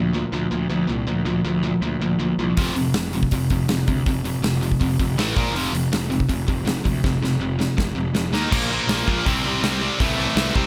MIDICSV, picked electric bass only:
0, 0, Header, 1, 2, 480
1, 0, Start_track
1, 0, Tempo, 371747
1, 1382, Time_signature, 4, 2, 24, 8
1, 13771, End_track
2, 0, Start_track
2, 0, Title_t, "Picked electric bass"
2, 0, Program_c, 0, 34
2, 0, Note_on_c, 0, 38, 94
2, 298, Note_off_c, 0, 38, 0
2, 419, Note_on_c, 0, 38, 86
2, 598, Note_off_c, 0, 38, 0
2, 669, Note_on_c, 0, 38, 80
2, 845, Note_off_c, 0, 38, 0
2, 901, Note_on_c, 0, 38, 90
2, 1079, Note_off_c, 0, 38, 0
2, 1145, Note_on_c, 0, 36, 85
2, 1323, Note_off_c, 0, 36, 0
2, 1381, Note_on_c, 0, 38, 88
2, 1560, Note_off_c, 0, 38, 0
2, 1609, Note_on_c, 0, 38, 85
2, 1793, Note_off_c, 0, 38, 0
2, 1866, Note_on_c, 0, 38, 92
2, 2222, Note_off_c, 0, 38, 0
2, 2339, Note_on_c, 0, 38, 83
2, 2520, Note_off_c, 0, 38, 0
2, 2578, Note_on_c, 0, 38, 79
2, 2760, Note_off_c, 0, 38, 0
2, 2822, Note_on_c, 0, 38, 82
2, 3002, Note_off_c, 0, 38, 0
2, 3078, Note_on_c, 0, 36, 81
2, 3253, Note_off_c, 0, 36, 0
2, 3329, Note_on_c, 0, 29, 85
2, 3500, Note_off_c, 0, 29, 0
2, 3549, Note_on_c, 0, 29, 84
2, 3727, Note_off_c, 0, 29, 0
2, 3803, Note_on_c, 0, 29, 86
2, 4155, Note_off_c, 0, 29, 0
2, 4288, Note_on_c, 0, 29, 81
2, 4460, Note_off_c, 0, 29, 0
2, 4524, Note_on_c, 0, 29, 79
2, 4697, Note_off_c, 0, 29, 0
2, 4767, Note_on_c, 0, 29, 83
2, 4940, Note_off_c, 0, 29, 0
2, 5009, Note_on_c, 0, 38, 92
2, 5181, Note_off_c, 0, 38, 0
2, 5249, Note_on_c, 0, 29, 92
2, 5421, Note_off_c, 0, 29, 0
2, 5470, Note_on_c, 0, 29, 88
2, 5650, Note_off_c, 0, 29, 0
2, 5715, Note_on_c, 0, 29, 86
2, 6071, Note_off_c, 0, 29, 0
2, 6208, Note_on_c, 0, 29, 87
2, 6382, Note_off_c, 0, 29, 0
2, 6450, Note_on_c, 0, 29, 85
2, 6675, Note_off_c, 0, 29, 0
2, 6675, Note_on_c, 0, 33, 89
2, 6853, Note_off_c, 0, 33, 0
2, 6929, Note_on_c, 0, 34, 84
2, 7151, Note_off_c, 0, 34, 0
2, 7151, Note_on_c, 0, 29, 91
2, 7331, Note_off_c, 0, 29, 0
2, 7401, Note_on_c, 0, 29, 92
2, 7577, Note_off_c, 0, 29, 0
2, 7638, Note_on_c, 0, 29, 90
2, 7993, Note_off_c, 0, 29, 0
2, 8129, Note_on_c, 0, 29, 82
2, 8303, Note_off_c, 0, 29, 0
2, 8369, Note_on_c, 0, 29, 89
2, 8543, Note_off_c, 0, 29, 0
2, 8582, Note_on_c, 0, 29, 84
2, 8765, Note_off_c, 0, 29, 0
2, 8854, Note_on_c, 0, 38, 87
2, 9025, Note_off_c, 0, 38, 0
2, 9097, Note_on_c, 0, 29, 90
2, 9267, Note_off_c, 0, 29, 0
2, 9305, Note_on_c, 0, 29, 82
2, 9487, Note_off_c, 0, 29, 0
2, 9538, Note_on_c, 0, 29, 88
2, 9900, Note_off_c, 0, 29, 0
2, 10053, Note_on_c, 0, 29, 84
2, 10224, Note_off_c, 0, 29, 0
2, 10267, Note_on_c, 0, 29, 87
2, 10447, Note_off_c, 0, 29, 0
2, 10505, Note_on_c, 0, 29, 85
2, 10686, Note_off_c, 0, 29, 0
2, 10741, Note_on_c, 0, 39, 86
2, 10923, Note_off_c, 0, 39, 0
2, 11005, Note_on_c, 0, 34, 98
2, 11345, Note_off_c, 0, 34, 0
2, 11458, Note_on_c, 0, 34, 98
2, 11634, Note_off_c, 0, 34, 0
2, 11719, Note_on_c, 0, 34, 88
2, 11887, Note_off_c, 0, 34, 0
2, 11968, Note_on_c, 0, 36, 92
2, 12133, Note_off_c, 0, 36, 0
2, 12193, Note_on_c, 0, 36, 93
2, 12363, Note_off_c, 0, 36, 0
2, 12420, Note_on_c, 0, 36, 92
2, 12766, Note_off_c, 0, 36, 0
2, 12916, Note_on_c, 0, 36, 96
2, 13255, Note_off_c, 0, 36, 0
2, 13373, Note_on_c, 0, 36, 102
2, 13548, Note_off_c, 0, 36, 0
2, 13632, Note_on_c, 0, 36, 94
2, 13771, Note_off_c, 0, 36, 0
2, 13771, End_track
0, 0, End_of_file